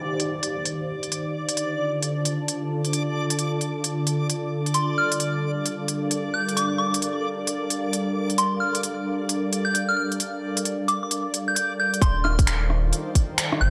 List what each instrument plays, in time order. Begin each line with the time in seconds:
Already playing: ambient pad D#3 D#4 G4 C5 F5, synth texture D5, downlifter
0.20 closed hi-hat
0.43 closed hi-hat
0.65 closed hi-hat
1.03 closed hi-hat
1.11 ambient pad D3, closed hi-hat
1.20 ambient pad D4
1.30 ambient pad F4
1.49 ambient pad A4, closed hi-hat
1.56 ambient pad A5, closed hi-hat
2.03 closed hi-hat
2.25 closed hi-hat
2.48 closed hi-hat
2.85 closed hi-hat
2.93 closed hi-hat
3.30 closed hi-hat
3.39 closed hi-hat
3.61 closed hi-hat
3.84 closed hi-hat
4.07 closed hi-hat
4.30 closed hi-hat
4.66 closed hi-hat
4.73 ambient pad G3, synth bell C6, closed hi-hat
4.87 ambient pad F5
4.98 synth bell F6
5.12 closed hi-hat
5.20 closed hi-hat
5.31 ambient pad A#4
5.66 closed hi-hat
5.88 closed hi-hat
6.11 closed hi-hat
6.34 synth bell G6
6.49 closed hi-hat
6.57 synth bell D6, closed hi-hat
6.78 synth bell D6
6.94 closed hi-hat
7.02 closed hi-hat
7.47 closed hi-hat
7.70 closed hi-hat
7.93 closed hi-hat
8.30 closed hi-hat
8.38 synth bell C6, closed hi-hat
8.60 synth bell F6
8.75 closed hi-hat
8.83 closed hi-hat
9.29 closed hi-hat
9.53 closed hi-hat
9.65 synth bell G6
9.74 synth bell G6, closed hi-hat
9.89 synth bell F6
9.97 synth bell F6
10.12 closed hi-hat
10.20 closed hi-hat
10.57 closed hi-hat
10.65 closed hi-hat
10.88 synth bell D6, closed hi-hat
11.03 synth bell D6
11.11 closed hi-hat
11.34 closed hi-hat
11.48 synth bell G6
11.55 synth bell G6, closed hi-hat
11.80 synth bell G6
11.94 closed hi-hat
12.02 sub bass D#1, ambient pad D#3, synth bell C6, kick, closed hi-hat
12.11 ambient pad D#4 C5
12.18 ambient pad F4
12.24 synth bell F6, cross-stick
12.39 kick, closed hi-hat
12.47 finger snap, closed hi-hat
12.63 ambient pad G5
12.70 cross-stick
12.93 closed hi-hat
13.15 kick, closed hi-hat
13.38 finger snap, closed hi-hat
13.52 cross-stick
13.61 sub bass G1, synth bell G6